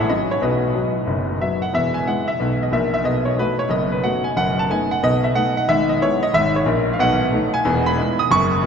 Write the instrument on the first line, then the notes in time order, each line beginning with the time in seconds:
grand piano
Already playing: A2 A4 C#5 F#5
0.09 F#3 C#4 F#4 D#5
0.31 C#5
0.41 B1 B2 F#4 B4 D#5
0.75 F#3 B3 F#4
1.07 F#1 F#2
1.40 F#3 B3 F#4 E5
1.62 F#5
1.73 E1 E2 E5
1.94 G#5
2.07 G#3 B3 E4 F#5
2.28 E5
2.40 B1 B2
2.63 D#5
2.72 A#1 A#2 E5
2.94 E5
3.04 B1 B2 D#5
3.25 C#5
3.38 A3 B3 F#4 B4
3.59 C#5
3.69 F#1 F#2 D#5
3.92 B4
4.03 A3 B3 F#4 F#5
4.24 G#5
4.36 F#1 F#2 F#5
4.59 A5
4.70 A3 B3 D#4 G#5
4.91 F#5
5.03 B1 B2 D#5
5.24 E5
5.35 A3 B3 D#4 F#5
5.57 F#5
5.68 G#1 G#2 E5
5.89 D#5
6.01 G#3 B3 E4 C#5
6.23 D#5
6.34 G#1 G#2 E5
6.56 C#5
6.66 A#1 A#2
6.93 F5
6.99 B1 B2 F#5
7.32 A3 B3 D#4
7.54 G#5
7.65 E1 E2
7.86 B5
7.98 G#3 B3 E4
8.19 D#6
8.30 F#1 F#2 C#6
8.63 F#3